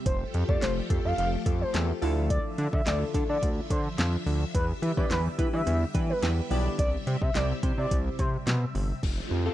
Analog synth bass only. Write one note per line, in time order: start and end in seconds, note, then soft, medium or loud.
0.06 0.24 F1 loud
0.34 0.44 F2 loud
0.49 0.57 F2 loud
0.63 0.81 F1 loud
0.90 1.00 F2 loud
1.05 1.14 F2 loud
1.18 1.36 F1 loud
1.46 1.64 F2 loud
1.74 1.93 E2 loud
2.02 2.39 D2 loud
2.58 2.68 D3 loud
2.73 2.82 D3 loud
2.86 3.04 D2 loud
3.14 3.24 D3 loud
3.29 3.38 D3 loud
3.43 3.61 D2 loud
3.70 3.89 D3 loud
3.98 4.17 F2 loud
4.26 4.45 D2 loud
4.55 4.73 E2 loud
4.82 4.92 E3 medium
4.97 5.06 E3 loud
5.10 5.29 E2 loud
5.39 5.48 E3 loud
5.53 5.62 E3 loud
5.67 5.85 E2 loud
5.95 6.13 E3 loud
6.23 6.41 E2 medium
6.51 6.69 B1 loud
6.79 6.97 C2 loud
7.07 7.17 C3 loud
7.21 7.30 C3 loud
7.35 7.53 C2 loud
7.63 7.73 C3 loud
7.78 7.86 C3 loud
7.91 8.09 C2 loud
8.19 8.37 C3 loud
8.47 8.65 B2 loud
8.75 8.93 G1 loud
9.03 9.21 F1 medium
9.31 9.49 F2 loud